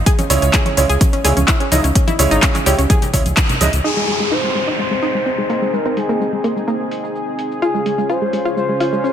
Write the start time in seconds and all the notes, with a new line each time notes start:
0.06 G#4, kick, closed hi-hat, shaker
0.19 C#4, closed hi-hat, high conga, shaker
0.30 C#2 C#3 G#3 C#4 E4 C#5, open hi-hat, shaker
0.42 C#2 C#4, closed hi-hat, shaker
0.54 G#4, kick, clap, closed hi-hat, shaker
0.66 C#4, closed hi-hat, high conga
0.77 C#2 C#3 G#3 C#4 E4 C#5, open hi-hat, shaker
0.89 C#2 G#4, closed hi-hat, shaker
1.01 C#4, kick, closed hi-hat, high conga, shaker
1.13 C#4, closed hi-hat
1.24 C#2 C#3 G#3 C#4 E4 G#4 C#5, open hi-hat, low conga, shaker
1.37 C#2 C#4, closed hi-hat, high conga, shaker
1.48 E4, kick, clap, closed hi-hat, shaker
1.60 C#4, closed hi-hat
1.72 C#2 C#3 G#3 C#4 D#4 E4 D#5, open hi-hat, high conga, shaker
1.84 C#2 C#4, closed hi-hat, shaker
1.95 C#4, kick, closed hi-hat, shaker
2.08 E4, closed hi-hat, high conga, shaker
2.19 C#2 C#3 G#3 C#4 E4 C#5, open hi-hat, shaker
2.31 G#1 D#4, closed hi-hat, shaker
2.43 C#4, kick, clap, closed hi-hat, shaker
2.55 C#4, clap, closed hi-hat, high conga, shaker
2.66 C#2 C#3 G#3 C#4 E4 G4 C#5, open hi-hat, shaker
2.78 C#2 C#4, closed hi-hat, shaker
2.90 G#4, kick, closed hi-hat, high conga, shaker
3.02 closed hi-hat, low conga, shaker
3.13 C#2 C#3 G#3 C#4 E4 C#5, kick, open hi-hat, shaker
3.26 C#2, closed hi-hat, high conga, shaker
3.37 kick, clap, closed hi-hat, shaker
3.49 closed hi-hat, low conga, shaker
3.61 C#2 G#2 G#3 C#4 E4 D#5, open hi-hat, high conga, shaker
3.73 C#2, closed hi-hat, shaker
3.84 C4 D#4 G#4, crash, downlifter
3.97 G#3
4.08 G#3, open hi-hat
4.20 G#3
4.32 D#4 C5
4.44 G#3
4.55 G#3, open hi-hat
4.67 D#4
4.79 G#3 C5, shaker
4.91 G#3
5.02 D#4, open hi-hat, shaker
5.15 G#3, shaker
5.26 C4, shaker
5.38 G#3
5.50 A#3, open hi-hat, shaker
5.62 G#3, shaker
5.73 G#3 A#4, shaker
5.85 C4, shaker
5.97 G#3 G#4, open hi-hat, shaker
6.09 A#3, shaker
6.20 G#3, shaker
6.33 G#3
6.44 A#3, open hi-hat, shaker
6.56 G#3, shaker
6.68 A#3, shaker
6.91 open hi-hat, shaker
7.04 shaker
7.16 shaker
7.39 open hi-hat, shaker
7.52 shaker
7.62 C#3 C#4 F4 G#4 G#5, shaker
7.74 G#3, shaker
7.86 G#3, open hi-hat, shaker
7.98 G#3, shaker
8.10 F4 C5, shaker
8.22 G#3
8.33 G#3, open hi-hat, shaker
8.45 F4, shaker
8.57 G#3 C5, shaker
8.69 G#3
8.80 F4, open hi-hat, shaker
8.93 G#3, shaker
9.04 C#4, shaker